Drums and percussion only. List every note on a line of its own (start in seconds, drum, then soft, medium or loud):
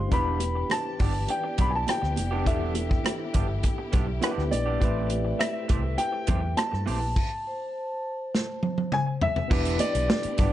0.12 kick medium
0.12 closed hi-hat medium
0.40 closed hi-hat medium
0.40 muted conga soft
0.70 cross-stick loud
0.70 closed hi-hat loud
0.70 high conga medium
0.99 kick medium
0.99 open hi-hat soft
1.28 closed hi-hat medium
1.28 muted conga soft
1.58 kick medium
1.58 closed hi-hat medium
1.58 muted conga soft
1.58 low conga medium
1.87 cross-stick loud
1.87 closed hi-hat medium
1.87 high conga medium
2.04 cross-stick soft
2.16 closed hi-hat medium
2.16 high conga medium
2.46 kick medium
2.46 closed hi-hat medium
2.75 closed hi-hat medium
2.75 muted conga medium
2.91 kick medium
3.05 cross-stick loud
3.05 closed hi-hat loud
3.05 high conga medium
3.34 kick medium
3.34 closed hi-hat medium
3.63 kick medium
3.63 closed hi-hat medium
3.63 muted conga soft
3.93 kick medium
3.93 closed hi-hat medium
3.93 muted conga soft
3.93 low conga medium
4.22 cross-stick loud
4.22 closed hi-hat medium
4.22 high conga medium
4.39 cross-stick soft
4.52 closed hi-hat medium
4.52 high conga medium
4.82 kick medium
4.82 closed hi-hat medium
5.10 closed hi-hat medium
5.10 muted conga medium
5.40 cross-stick loud
5.40 closed hi-hat loud
5.40 high conga medium
5.69 kick loud
5.69 closed hi-hat medium
5.98 closed hi-hat medium
5.98 muted conga soft
6.27 kick medium
6.27 closed hi-hat medium
6.27 muted conga medium
6.27 low conga medium
6.57 cross-stick loud
6.57 closed hi-hat medium
6.57 high conga medium
6.74 cross-stick soft
6.87 open hi-hat soft
6.87 high conga medium
7.16 kick medium
7.16 crash medium
8.35 snare medium
8.63 high tom medium
8.78 high tom medium
8.92 mid tom medium
9.21 floor tom loud
9.36 floor tom medium
9.51 kick loud
9.51 crash medium
9.65 closed hi-hat medium
9.79 closed hi-hat medium
9.79 muted conga medium
9.95 closed hi-hat medium
10.10 snare loud
10.10 high conga medium
10.23 closed hi-hat medium
10.38 kick loud
10.38 closed hi-hat medium
10.38 low conga medium